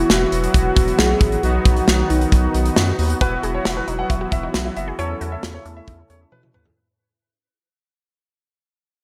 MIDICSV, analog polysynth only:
0, 0, Header, 1, 2, 480
1, 0, Start_track
1, 0, Tempo, 444444
1, 1548, Time_signature, 4, 2, 24, 8
1, 9760, End_track
2, 0, Start_track
2, 0, Title_t, "Analog polysynth"
2, 0, Program_c, 0, 90
2, 0, Note_on_c, 0, 59, 68
2, 0, Note_on_c, 0, 64, 65
2, 0, Note_on_c, 0, 66, 79
2, 1509, Note_off_c, 0, 64, 0
2, 1509, Note_off_c, 0, 66, 0
2, 1510, Note_off_c, 0, 59, 0
2, 1548, Note_on_c, 0, 59, 73
2, 1548, Note_on_c, 0, 63, 65
2, 1548, Note_on_c, 0, 66, 76
2, 3429, Note_off_c, 0, 59, 0
2, 3429, Note_off_c, 0, 63, 0
2, 3429, Note_off_c, 0, 66, 0
2, 3467, Note_on_c, 0, 66, 90
2, 3468, Note_on_c, 0, 59, 83
2, 3468, Note_on_c, 0, 64, 74
2, 5349, Note_off_c, 0, 59, 0
2, 5349, Note_off_c, 0, 64, 0
2, 5349, Note_off_c, 0, 66, 0
2, 5387, Note_on_c, 0, 61, 79
2, 5387, Note_on_c, 0, 64, 76
2, 5387, Note_on_c, 0, 69, 87
2, 7269, Note_off_c, 0, 61, 0
2, 7269, Note_off_c, 0, 64, 0
2, 7269, Note_off_c, 0, 69, 0
2, 9760, End_track
0, 0, End_of_file